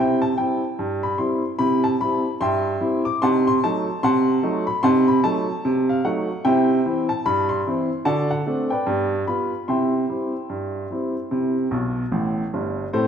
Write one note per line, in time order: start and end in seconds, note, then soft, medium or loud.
0.00 0.31 C3 medium
0.00 0.20 E4 medium
0.00 0.19 C5 medium
0.00 0.19 E5 medium
0.00 0.20 G5 loud
0.22 0.37 A5 medium
0.38 0.60 G3 soft
0.38 0.61 C4 soft
0.38 0.61 E4 medium
0.38 0.89 G5 medium
0.79 1.13 G2 medium
1.03 1.19 B5 medium
1.18 1.41 G3 medium
1.18 1.41 C4 medium
1.18 1.41 E4 medium
1.18 1.51 C6 medium
1.59 1.93 C3 medium
1.59 1.82 E4 medium
1.59 1.83 B5 loud
1.84 2.00 A5 medium
2.01 2.23 G3 medium
2.01 2.23 C4 medium
2.01 2.24 E4 medium
2.01 2.33 B5 medium
2.41 2.75 G2 medium
2.41 3.01 E5 medium
2.41 3.02 G5 medium
2.41 3.02 C6 loud
2.81 3.03 G3 medium
2.81 3.03 C4 medium
2.81 3.03 E4 medium
3.05 3.21 D6 medium
3.22 3.56 C3 loud
3.22 3.46 D#4 medium
3.22 3.45 F#5 medium
3.22 3.44 A5 medium
3.22 3.45 C6 loud
3.47 3.62 C6 loud
3.64 3.85 F#3 medium
3.64 3.86 A3 medium
3.64 3.86 D#4 medium
3.64 4.01 A5 medium
4.03 4.37 C3 medium
4.03 4.63 F#5 medium
4.03 4.63 A5 medium
4.03 4.64 C6 loud
4.43 4.65 F#3 medium
4.43 4.65 A3 medium
4.43 4.65 D#4 medium
4.67 4.83 B5 medium
4.83 5.17 C3 loud
4.83 5.07 D#4 medium
4.83 5.06 F#5 medium
4.83 5.06 A5 medium
4.83 5.07 C6 loud
5.08 5.23 B5 loud
5.24 5.46 F#3 medium
5.24 5.46 A3 medium
5.24 5.46 D#4 medium
5.24 5.75 A5 loud
5.65 5.98 C3 loud
5.89 6.05 F5 medium
6.04 6.26 F#3 medium
6.04 6.27 A3 medium
6.04 6.28 D#4 medium
6.04 6.42 F#5 medium
6.45 6.79 C3 loud
6.45 6.68 E4 medium
6.45 7.05 C5 medium
6.45 7.05 E5 medium
6.45 7.05 G5 loud
6.86 7.08 E3 medium
6.86 7.08 C4 medium
6.86 7.08 E4 medium
7.09 7.25 A5 medium
7.26 7.60 G2 medium
7.26 7.49 B5 loud
7.49 8.03 C6 medium
7.67 7.89 E3 medium
7.67 7.89 C4 medium
7.67 7.89 E4 medium
8.05 8.40 D3 medium
8.05 8.29 F#4 medium
8.05 8.29 D5 medium
8.05 8.28 F#5 medium
8.05 8.29 A5 loud
8.31 8.69 F#5 medium
8.46 8.69 A3 medium
8.46 8.69 C4 medium
8.46 8.69 D4 medium
8.70 9.24 B4 medium
8.70 9.24 D5 medium
8.70 9.16 G5 medium
8.87 9.21 G2 medium
8.87 9.10 B3 medium
9.28 9.50 G3 soft
9.28 9.50 B3 soft
9.28 9.51 F4 medium
9.28 9.66 B5 medium
9.68 10.03 C3 medium
9.68 9.93 E4 soft
9.68 12.09 E5 medium
9.68 12.09 G5 medium
9.68 11.63 C6 medium
10.09 10.31 G3 soft
10.09 10.32 C4 soft
10.09 10.32 E4 soft
10.50 10.84 G2 medium
10.91 11.13 G3 soft
10.91 11.14 C4 soft
10.91 11.14 E4 soft
11.31 11.66 C3 medium
11.31 11.55 E4 soft
11.71 12.02 B1 medium
11.71 12.02 B2 medium
12.12 12.42 A1 medium
12.12 12.42 A2 medium
12.54 12.84 G1 medium
12.54 12.84 G2 medium
12.93 13.07 A2 medium
12.93 13.07 C4 medium
12.93 13.07 A4 medium
12.93 13.07 C5 medium